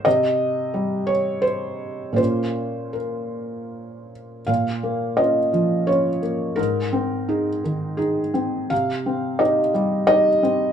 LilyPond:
\new Staff \with { instrumentName = "Felt piano" } { \time 3/4 \key bes \dorian \tempo 4 = 86 << { ees''4. des''8 c''4 | c''4 bes'4. r8 | f''4 ees''4 des''4 | bes'2 aes'4 |
f''4 ees''4 ees''4 | } \\ { c4 g2 | <bes, bes des' f'>2. | bes,8 bes8 <des' f'>8 f8 <des' f'>8 bes8 | aes,8 c'8 <ees' aes'>8 ees8 ees'8 c'8 |
c8 c'8 <ees' g'>8 g8 <ees' g'>8 c'8 | } >> }